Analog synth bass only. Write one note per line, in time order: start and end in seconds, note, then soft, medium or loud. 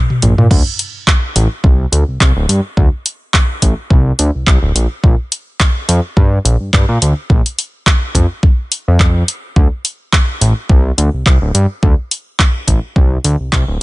0.23 0.34 A#1 loud
0.38 0.48 A#2 medium
0.51 0.63 D2 loud
1.36 1.47 A1 loud
1.64 1.86 C2 loud
1.92 2.04 D2 medium
2.08 2.18 C2 soft
2.21 2.32 C2 medium
2.36 2.46 D1 medium
2.49 2.61 G2 medium
2.77 2.89 D2 loud
3.62 3.74 A1 loud
3.90 4.12 C2 loud
4.19 4.31 D2 medium
4.35 4.45 C2 soft
4.47 4.59 C2 medium
4.62 4.72 D1 medium
4.75 4.87 A#1 medium
5.04 5.15 A#1 loud
5.89 6.00 F2 loud
6.17 6.39 G2 loud
6.45 6.57 A#1 medium
6.60 6.71 G2 soft
6.73 6.85 G2 medium
6.89 6.98 A#2 medium
7.02 7.14 D2 medium
7.30 7.42 A#1 loud
8.15 8.27 F2 medium
8.88 9.23 F2 medium
9.56 9.68 D2 loud
10.41 10.53 A1 loud
10.69 10.91 C2 loud
10.98 11.10 D2 medium
11.14 11.24 C2 soft
11.26 11.38 C2 medium
11.42 11.51 D1 medium
11.55 11.66 G2 medium
11.83 11.95 D2 loud
12.68 12.79 A1 loud
12.96 13.18 C2 loud
13.24 13.36 D2 medium
13.40 13.50 C2 soft
13.52 13.64 C2 medium
13.68 13.78 D1 medium